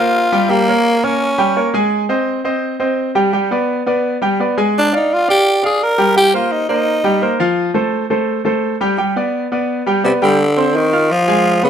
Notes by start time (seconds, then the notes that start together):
Already playing: A#3 F4 A#4 C5
0.32 G3 G4 G5
0.50 G3 A#3 G4 G5
0.68 A#3 A#4 C#5
1.04 A#3 C#4 A#4 C#5
1.38 G3 G4 G5
1.56 A#3 A#4 C#5
1.74 G#3 G#4 G#5
2.09 C4 C5 D#5
2.44 C4 C5 D#5
2.80 C4 C5 D#5
3.15 G3 G4 G5
3.33 G3 G4 G5
3.51 B3 B4 D5
3.86 B3 B4 D5
4.22 G3 G4 G5
4.40 B3 B4 D5
4.57 G#3 G#4 G#5
4.78 D4
4.93 D4 D#4 D5 F5
5.14 F4
5.28 D4 G4 D5 F5
5.63 D4 G#4 D5 F5
5.83 A#4
5.98 G3 G4 G5
6.16 G3 G4 G5
6.34 A#3 F4 A#4 C5
6.52 D#4
6.69 A#3 D#4 A#4 C5
7.04 G3 G4 G5
7.22 A#3 A#4 C5
7.40 F3 F4 F5
7.74 A3 A4 C5
8.10 A3 A4 C5
8.45 A3 A4 C5
8.81 G3 G4 G5
8.98 G3 G4 G5
9.16 B3 B4 D5
9.52 B3 B4 D5
9.86 G3 G4 G5
10.04 C3 B3 B4 D5
10.22 D3 G3 G4 G5
10.57 C4 C5 C6
10.76 D#3
10.93 F4 F5 F6
11.11 F3
11.28 G#3 G#4 G#5
11.63 D3 B3 B4 B5